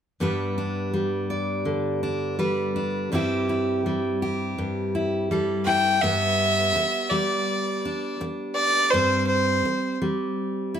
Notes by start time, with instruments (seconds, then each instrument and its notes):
0.20 steel-string acoustic guitar G2 G3 B3 D4 B4
0.58 steel-string acoustic guitar D4
0.94 steel-string acoustic guitar G3
1.30 steel-string acoustic guitar D5
1.65 steel-string acoustic guitar D3
2.03 steel-string acoustic guitar D4
2.39 steel-string acoustic guitar G3 B4
2.76 steel-string acoustic guitar D4
3.12 steel-string acoustic guitar G2 G3 C4 E4 G4
3.49 steel-string acoustic guitar E4
3.86 steel-string acoustic guitar G3
4.22 steel-string acoustic guitar G4
4.58 steel-string acoustic guitar G2
4.95 steel-string acoustic guitar E4
5.31 steel-string acoustic guitar G3 A4
5.65 steel-string acoustic guitar E4, fiddle G5
6.01 steel-string acoustic guitar G2 B3, fiddle E5
6.75 muted steel-string acoustic guitar stroke
7.10 steel-string acoustic guitar G3, fiddle D5
7.85 steel-string acoustic guitar D4
8.21 muted steel-string acoustic guitar stroke
8.55 fiddle D5
8.90 steel-string acoustic guitar G2 C4, fiddle C5
9.27 fiddle C5
9.65 muted steel-string acoustic guitar stroke
10.02 steel-string acoustic guitar G3
10.74 steel-string acoustic guitar E4